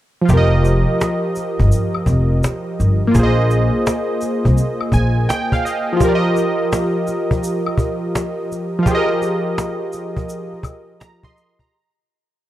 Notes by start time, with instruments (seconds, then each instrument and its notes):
0.22 synth keys F3 F4
0.29 upright bass F1, synth keys G4, cajon bass, shaker
0.34 synth keys A#4 D#5
0.65 cajon slap, shaker
1.01 cajon slap, shaker
1.36 cajon slap, shaker
1.59 upright bass G1, cajon bass
1.72 shaker
1.94 cajon slap, high woodblock
2.06 upright bass F1, cajon bass, shaker
2.44 cajon slap, shaker
2.80 upright bass G1, cajon slap, shaker
3.07 synth keys A#3 F4
3.15 upright bass A#1, synth keys G#4, cajon bass, shaker
3.19 synth keys C5 D#5
3.51 shaker
3.87 cajon slap, shaker
4.21 cajon slap, shaker
4.45 upright bass C2, cajon bass
4.56 cajon slap, shaker
4.81 cajon slap, high woodblock
4.92 upright bass A#1, synth keys G#5, cajon bass, shaker
5.29 synth keys G5, cajon slap, shaker
5.52 synth keys F5, cajon bass
5.65 synth keys D#5, shaker
5.92 synth keys F3
5.97 synth keys F4 G4, cajon bass
6.01 synth keys A#4, shaker
6.08 synth keys D5
6.15 synth keys D#5
6.36 cajon slap, shaker
6.73 cajon slap, shaker
7.07 cajon slap, shaker
7.31 cajon bass
7.42 cajon slap, shaker
7.66 cajon slap, high woodblock
7.78 cajon bass, shaker
8.15 cajon slap, shaker
8.52 cajon slap, shaker
8.79 synth keys F3
8.83 synth keys F4, cajon bass, shaker
8.87 synth keys G4 G#4
8.95 synth keys A#4 D#5
9.22 cajon slap, shaker
9.58 cajon slap, shaker
9.93 cajon slap, shaker
10.17 cajon bass
10.28 cajon slap, shaker
10.53 cajon slap
10.63 cajon bass, high woodblock, shaker
11.00 synth keys A#5, cajon slap, shaker
11.23 synth keys D#5 C6, cajon bass
11.37 cajon slap, shaker
11.59 synth keys A#5, cajon bass